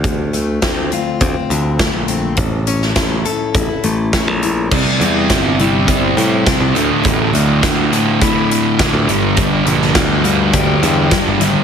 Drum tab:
CC |----------------|----------------|x---------------|----------------|
HH |x-x-x-x-x-x-x-x-|x-x-x-x-x-x-x-x-|--x-x-x-x-x-x-x-|x-x-x-x-x-x-x-x-|
SD |----o-------o---|---oo-------o---|----o-------o---|----o-------o---|
BD |o---o---o---o---|o---o---o---o---|o---o---o---o---|o---o---o---o---|

CC |----------------|
HH |x-x-x-x-x-x-x-x-|
SD |---oo-------o---|
BD |o---o---o---o---|